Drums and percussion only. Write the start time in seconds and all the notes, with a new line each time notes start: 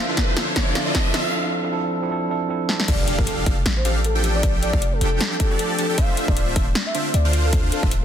0.17 kick, snare, closed hi-hat
0.37 snare, closed hi-hat
0.56 kick, snare, closed hi-hat
0.75 snare, closed hi-hat
0.95 kick, snare, closed hi-hat
1.14 snare, closed hi-hat
2.69 snare
2.80 snare
2.88 kick, closed hi-hat, crash
3.08 closed hi-hat
3.19 kick
3.27 closed hi-hat
3.46 kick, closed hi-hat
3.66 snare, closed hi-hat
3.85 closed hi-hat
4.04 closed hi-hat
4.24 closed hi-hat
4.43 kick, closed hi-hat
4.63 closed hi-hat
4.73 kick
4.82 closed hi-hat
5.01 closed hi-hat
5.21 snare, closed hi-hat
5.40 kick, closed hi-hat
5.59 closed hi-hat
5.79 closed hi-hat
5.98 kick, closed hi-hat
6.17 closed hi-hat
6.28 kick
6.37 closed hi-hat
6.56 kick, closed hi-hat
6.75 snare, closed hi-hat
6.95 closed hi-hat
7.14 closed hi-hat
7.33 closed hi-hat
7.53 kick, closed hi-hat
7.72 closed hi-hat
7.83 kick
7.91 closed hi-hat